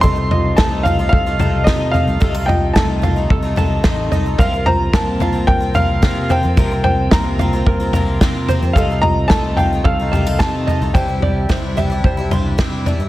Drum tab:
SD |--o---o-|--o---o-|--o---o-|--o---o-|
FT |oooooooo|oooooooo|oooooooo|oooooooo|
BD |o-o-o-o-|o-o-o-o-|o-o-o-o-|o-o-o-o-|

SD |--o---o-|--o---o-|
FT |oooooooo|oooooooo|
BD |o-o-o-o-|o-o-o-o-|